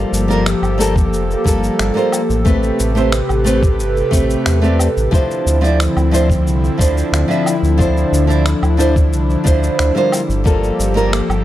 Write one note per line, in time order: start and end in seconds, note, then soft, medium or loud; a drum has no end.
0.00 2.44 F3 medium
0.00 0.25 G3 medium
0.00 0.25 A#3 medium
0.00 2.44 A#3 medium
0.00 0.26 F4 medium
0.00 2.44 G4 medium
0.00 0.26 A4 medium
0.00 5.09 A4 medium
0.12 0.55 G1 medium
0.12 shaker medium
0.28 0.44 G3 medium
0.28 0.44 A#3 medium
0.28 0.45 F4 medium
0.28 0.45 A#4 medium
0.28 shaker soft
0.46 finger snap loud
0.46 shaker soft
0.62 1.13 G1 medium
0.62 low woodblock medium
0.62 shaker soft
0.78 0.94 G3 medium
0.78 0.95 A#3 medium
0.78 0.95 F4 medium
0.78 0.95 A4 medium
0.78 shaker medium
0.96 kick loud
0.96 shaker soft
1.12 1.36 F1 medium
1.12 shaker soft
1.31 shaker soft
1.44 1.70 G1 medium
1.44 1.91 G3 medium
1.44 1.92 A#3 medium
1.44 1.92 F4 medium
1.44 1.93 A4 medium
1.44 kick medium
1.44 shaker medium
1.64 shaker soft
1.79 1.91 G1 medium
1.79 finger snap loud
1.79 shaker soft
1.94 2.20 G3 medium
1.94 2.20 A#3 medium
1.94 2.21 F4 medium
1.94 2.21 C5 medium
1.94 shaker soft
2.12 low woodblock medium
2.12 shaker medium
2.30 2.72 A1 medium
2.30 shaker soft
2.45 5.10 C3 medium
2.45 2.92 A3 medium
2.45 2.92 C4 medium
2.45 2.92 G4 medium
2.45 5.10 G4 medium
2.45 5.10 B4 medium
2.45 2.93 B4 medium
2.45 kick loud
2.45 shaker soft
2.63 shaker soft
2.79 3.22 A1 medium
2.79 shaker medium
2.95 3.11 A3 medium
2.95 3.11 C4 medium
2.95 3.12 G4 medium
2.95 3.12 C5 medium
2.95 shaker soft
3.12 finger snap loud
3.12 shaker soft
3.29 3.81 A1 medium
3.29 low woodblock medium
3.29 shaker soft
3.44 3.61 A3 medium
3.44 3.61 C4 medium
3.44 3.62 G4 medium
3.44 3.62 B4 medium
3.44 shaker medium
3.63 kick loud
3.63 shaker soft
3.80 4.03 G1 medium
3.80 shaker soft
3.97 shaker soft
4.11 4.36 A1 medium
4.11 4.58 A3 medium
4.11 4.58 C4 medium
4.11 4.59 G4 medium
4.11 4.59 B4 medium
4.11 kick loud
4.11 shaker medium
4.30 shaker soft
4.46 4.89 E2 medium
4.46 finger snap loud
4.46 shaker soft
4.62 4.87 A3 medium
4.62 4.87 C4 medium
4.62 4.88 G4 medium
4.62 4.88 D5 medium
4.62 shaker soft
4.79 low woodblock medium
4.79 shaker medium
4.97 5.08 A1 medium
4.97 shaker soft
5.11 10.08 D3 medium
5.11 5.58 F3 medium
5.11 10.09 F3 medium
5.11 7.77 C4 medium
5.11 5.58 D4 medium
5.11 10.09 E4 medium
5.11 5.59 E4 medium
5.11 5.59 C5 medium
5.11 kick loud
5.11 shaker soft
5.31 shaker soft
5.46 5.88 D2 medium
5.46 shaker medium
5.61 5.77 F3 medium
5.61 5.78 D4 medium
5.61 5.78 E4 medium
5.61 5.79 D5 medium
5.61 shaker soft
5.80 finger snap medium
5.80 shaker soft
5.97 6.48 D2 medium
5.97 low woodblock medium
5.97 shaker soft
6.11 6.28 F3 medium
6.11 6.28 D4 medium
6.11 6.29 E4 medium
6.11 6.29 C5 medium
6.11 shaker medium
6.30 kick loud
6.30 shaker soft
6.47 6.70 C2 medium
6.47 shaker soft
6.64 shaker soft
6.78 7.03 D2 medium
6.78 7.25 F3 medium
6.78 7.25 D4 medium
6.78 7.26 E4 medium
6.78 7.26 C5 medium
6.78 kick loud
6.78 shaker medium
6.97 shaker soft
7.12 7.24 D2 medium
7.12 finger snap medium
7.12 shaker soft
7.28 7.53 F3 medium
7.28 7.54 D4 medium
7.28 7.54 E4 medium
7.28 7.55 E5 medium
7.28 shaker soft
7.46 low woodblock medium
7.46 shaker medium
7.63 8.05 D2 loud
7.63 shaker soft
7.78 8.25 F3 medium
7.78 8.25 D4 medium
7.78 10.11 D4 medium
7.78 8.26 E4 medium
7.78 8.26 C5 medium
7.78 kick loud
7.78 shaker soft
7.97 shaker soft
8.12 8.55 D2 loud
8.12 shaker medium
8.27 8.44 F3 medium
8.27 8.44 D4 medium
8.27 8.45 E4 medium
8.27 8.45 D5 medium
8.27 shaker soft
8.46 finger snap medium
8.46 shaker soft
8.62 9.14 D2 medium
8.62 low woodblock medium
8.62 shaker soft
8.77 8.94 F3 medium
8.77 8.94 D4 medium
8.77 8.95 E4 medium
8.77 8.95 C5 medium
8.77 shaker medium
8.96 kick medium
8.96 shaker soft
9.13 9.37 C2 loud
9.13 shaker soft
9.30 shaker soft
9.44 9.70 D2 medium
9.44 9.91 F3 medium
9.44 9.91 D4 medium
9.44 9.92 E4 medium
9.44 9.92 C5 medium
9.44 kick medium
9.44 shaker medium
9.63 shaker soft
9.79 9.91 D2 medium
9.79 finger snap medium
9.79 shaker soft
9.95 10.20 G3 medium
9.95 10.21 A#3 medium
9.95 10.21 F4 medium
9.95 10.21 C5 medium
9.95 shaker soft
10.12 11.44 F3 medium
10.12 11.44 A#3 medium
10.12 11.44 G4 loud
10.12 11.44 A4 medium
10.12 low woodblock medium
10.12 shaker medium
10.29 10.71 G1 medium
10.29 shaker soft
10.44 10.91 G3 medium
10.44 10.92 A#3 medium
10.44 10.92 F4 medium
10.44 10.92 A4 medium
10.44 kick loud
10.44 shaker soft
10.63 shaker soft
10.79 11.22 G1 medium
10.79 shaker medium
10.94 11.10 G3 medium
10.94 11.11 A#3 medium
10.94 11.12 F4 medium
10.94 11.12 A#4 medium
10.94 shaker soft
11.13 finger snap medium
11.13 shaker soft
11.29 11.44 G1 medium
11.29 low woodblock medium
11.29 shaker soft